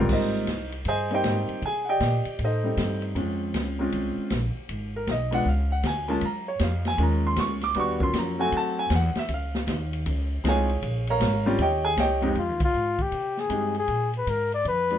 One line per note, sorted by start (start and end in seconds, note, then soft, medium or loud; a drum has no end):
0.00 0.45 G#2 medium
0.00 0.45 G3 medium
0.00 0.46 A#3 medium
0.00 0.46 C4 medium
0.00 0.46 F4 loud
0.09 0.46 G#1 medium
0.09 0.70 D#4 medium
0.09 0.70 C5 medium
0.09 0.70 D#5 medium
0.09 kick medium
0.09 crash medium
0.13 0.71 A#4 medium
0.47 0.84 C2 medium
0.47 kick soft
0.47 snare medium
0.47 hi-hat pedal medium
0.47 ride medium
0.72 ride medium
0.85 1.23 G2 medium
0.85 1.11 G#4 medium
0.85 1.12 C5 medium
0.85 1.12 D#5 medium
0.85 1.12 G#5 loud
0.85 kick soft
0.85 ride medium
1.10 1.60 G3 medium
1.10 1.60 A#3 medium
1.10 1.60 C4 medium
1.10 1.61 D#4 medium
1.10 1.61 G4 medium
1.10 1.61 C5 medium
1.10 1.61 D#5 medium
1.10 ride soft
1.15 1.61 G5 loud
1.23 1.47 G#2 loud
1.23 kick soft
1.23 snare medium
1.23 hi-hat pedal medium
1.23 ride medium
1.49 muted upright bass stroke soft
1.49 ride soft
1.62 2.00 C3 medium
1.62 1.88 G#5 loud
1.62 kick soft
1.62 ride medium
1.67 1.89 G#4 medium
1.85 1.87 F#5 medium
1.89 2.37 G4 medium
1.89 2.37 D5 medium
1.89 2.37 D#5 medium
1.89 2.37 G5 loud
2.00 2.24 A#2 medium
2.00 kick soft
2.00 snare medium
2.00 hi-hat pedal soft
2.00 ride medium
2.25 muted upright bass stroke soft
2.25 ride soft
2.39 2.76 A2 medium
2.39 kick soft
2.39 ride medium
2.44 2.64 D#4 medium
2.44 3.01 A4 medium
2.44 3.01 C5 medium
2.44 3.01 D#5 medium
2.64 3.13 G3 medium
2.64 3.13 A3 medium
2.64 3.14 C4 medium
2.64 3.14 D#4 medium
2.77 3.15 G2 loud
2.77 kick soft
2.77 snare medium
2.77 hi-hat pedal medium
2.77 ride medium
3.02 ride soft
3.15 3.53 F2 medium
3.15 3.74 G#3 medium
3.15 3.74 C4 medium
3.15 3.75 C#4 medium
3.15 3.75 F4 medium
3.15 kick soft
3.15 ride medium
3.54 3.92 C#2 medium
3.54 kick soft
3.54 snare medium
3.54 hi-hat pedal medium
3.54 ride medium
3.79 4.28 G#3 medium
3.79 4.28 C4 medium
3.79 4.29 C#4 medium
3.79 4.29 F4 medium
3.92 4.16 C2 medium
3.92 kick soft
3.92 ride medium
4.17 muted upright bass stroke soft
4.30 4.54 A#1 medium
4.30 kick soft
4.30 snare medium
4.30 hi-hat pedal medium
4.30 ride medium
4.55 muted upright bass stroke soft
4.69 5.06 G#1 medium
4.69 kick soft
4.69 ride medium
4.96 5.08 A#4 medium
5.07 5.45 B1 loud
5.07 kick soft
5.07 snare medium
5.07 hi-hat pedal medium
5.07 ride medium
5.11 5.34 D#5 medium
5.31 5.44 G#3 medium
5.31 5.44 B3 medium
5.31 5.44 D4 medium
5.31 5.45 F4 medium
5.31 5.46 F#5 loud
5.31 ride medium
5.45 5.83 C#2 medium
5.45 5.72 F5 medium
5.45 kick soft
5.72 5.84 F#5 medium
5.83 6.21 D2 loud
5.83 6.10 G#5 medium
5.83 kick soft
5.83 snare medium
5.83 hi-hat pedal medium
5.83 ride medium
6.08 6.21 G#3 medium
6.08 6.21 A#3 medium
6.08 6.21 C#4 medium
6.08 6.22 F4 medium
6.08 6.23 A5 medium
6.08 ride soft
6.21 6.59 F#2 medium
6.21 kick soft
6.21 ride medium
6.25 6.48 A#5 loud
6.48 6.61 C#5 medium
6.59 6.98 F2 medium
6.59 6.86 F5 medium
6.59 kick soft
6.59 snare medium
6.59 hi-hat pedal medium
6.59 ride medium
6.85 7.00 G#5 loud
6.85 snare medium
6.85 ride medium
6.98 7.36 D#2 medium
6.98 7.57 G#3 medium
6.98 7.57 A#3 medium
6.98 7.57 C#4 medium
6.98 7.58 F4 medium
6.98 kick soft
6.98 ride medium
7.03 7.25 A#5 medium
7.27 7.38 C6 loud
7.36 7.74 C#2 loud
7.36 7.63 C#6 medium
7.36 kick soft
7.36 snare medium
7.36 hi-hat pedal medium
7.36 ride medium
7.61 7.76 D6 loud
7.61 snare soft
7.61 ride soft
7.74 8.13 D#2 medium
7.74 7.98 G3 medium
7.74 7.99 B3 medium
7.74 7.99 D4 medium
7.74 7.99 F#4 medium
7.74 kick soft
7.74 ride medium
7.80 8.02 C#6 medium
8.00 8.34 F#3 medium
8.00 8.34 A#3 medium
8.00 8.34 C#4 medium
8.00 8.34 F4 medium
8.00 8.15 C6 loud
8.00 kick medium
8.13 8.51 F2 medium
8.13 kick soft
8.13 snare medium
8.13 hi-hat pedal medium
8.13 ride medium
8.18 8.40 A#5 medium
8.38 8.88 F#3 medium
8.38 8.88 A3 medium
8.38 8.88 C4 medium
8.38 8.89 F#4 medium
8.38 8.53 G#5 loud
8.52 8.89 F#2 medium
8.52 kick soft
8.52 ride medium
8.57 8.79 A5 loud
8.79 8.91 G#5 loud
8.90 9.14 E2 loud
8.90 kick soft
8.90 snare medium
8.90 hi-hat pedal medium
8.90 ride medium
8.95 9.17 F#5 medium
9.15 9.30 E5 medium
9.15 muted upright bass stroke soft
9.15 snare medium
9.15 ride soft
9.29 9.66 C#2 medium
9.29 kick soft
9.29 ride medium
9.34 10.04 F5 medium
9.55 snare medium
9.67 10.04 D#2 loud
9.67 kick soft
9.67 snare medium
9.67 hi-hat pedal medium
9.67 ride medium
9.93 ride medium
10.06 10.43 C#2 loud
10.06 kick soft
10.06 ride medium
10.44 10.81 C2 loud
10.44 10.66 G#3 medium
10.44 10.67 C4 medium
10.44 10.67 D#4 medium
10.44 10.67 F4 medium
10.44 kick soft
10.44 snare medium
10.44 hi-hat pedal medium
10.44 ride medium
10.48 11.06 G#4 medium
10.48 11.06 C#5 medium
10.48 11.05 F5 medium
10.48 11.06 G#5 medium
10.69 ride medium
10.82 11.20 A#1 medium
10.82 kick soft
10.82 ride medium
11.07 11.57 A#4 medium
11.07 11.57 C#5 medium
11.07 11.57 F5 medium
11.07 11.57 A#5 loud
11.07 ride medium
11.20 11.58 G#1 loud
11.20 kick soft
11.20 snare medium
11.20 hi-hat pedal medium
11.20 ride medium
11.46 11.58 G3 medium
11.46 11.58 C4 medium
11.46 11.58 C#4 medium
11.46 11.58 F4 loud
11.59 11.96 D#2 medium
11.59 11.85 G4 medium
11.59 11.85 C#5 medium
11.59 11.85 D#5 medium
11.59 11.85 G5 medium
11.59 kick soft
11.59 ride medium
11.85 11.98 G#4 medium
11.85 11.97 G#5 loud
11.97 12.34 C2 loud
11.97 12.22 G4 medium
11.97 12.28 C#5 medium
11.97 12.28 D#5 medium
11.97 12.28 G5 medium
11.97 kick soft
11.97 snare medium
11.97 hi-hat pedal medium
11.97 ride medium
12.22 12.34 F2 medium
12.22 12.34 G#3 medium
12.22 12.35 C4 medium
12.22 12.35 D#4 medium
12.22 12.35 G4 medium
12.22 ride medium
12.35 12.49 F2 medium
12.35 12.61 F4 medium
12.35 kick soft
12.35 ride medium
12.49 12.61 D#2 soft
12.60 12.73 C2 medium
12.60 kick medium
12.60 ride medium
12.64 13.03 F4 medium
12.73 13.11 G#2 medium
12.73 hi-hat pedal soft
12.98 13.41 G4 medium
12.98 kick medium
12.98 ride soft
13.12 13.49 C3 medium
13.12 kick soft
13.12 ride medium
13.37 13.77 G#4 medium
13.37 snare soft
13.49 13.88 G2 medium
13.49 13.73 G#3 medium
13.49 13.73 C4 medium
13.49 13.73 D#4 medium
13.49 13.73 G4 medium
13.49 kick soft
13.49 hi-hat pedal medium
13.49 ride medium
13.74 14.13 G#4 medium
13.74 ride soft
13.88 14.26 A#2 medium
13.88 kick soft
13.88 ride medium
14.13 ride soft
14.18 14.31 B4 medium
14.27 14.64 G#2 medium
14.27 14.53 A#4 loud
14.27 kick soft
14.27 hi-hat pedal soft
14.27 ride medium
14.52 14.66 D5 medium
14.52 ride soft
14.65 14.98 F2 medium
14.65 14.98 B4 loud
14.65 kick soft
14.65 ride medium
14.90 14.98 G#3 medium
14.90 14.98 B3 medium
14.90 14.98 D4 medium
14.90 14.98 F4 medium
14.90 ride soft